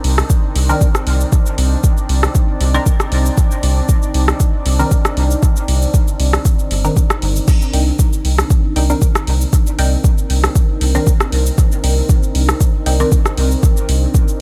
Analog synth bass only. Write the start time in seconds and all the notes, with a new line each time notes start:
0.04 C2
0.55 C2
1.07 C2
1.58 C2
2.09 C2
2.61 C2
3.12 C2
3.63 C2
4.14 C2
4.66 C2
5.17 C2
5.68 C2
6.20 C2
6.71 G1
7.22 G1
7.73 C2
8.25 C2
8.76 C2
9.27 C2
9.79 C2
10.30 C2
10.81 C2
11.32 C2
11.84 C2
12.35 C2
12.86 C2
13.38 C2
13.89 C2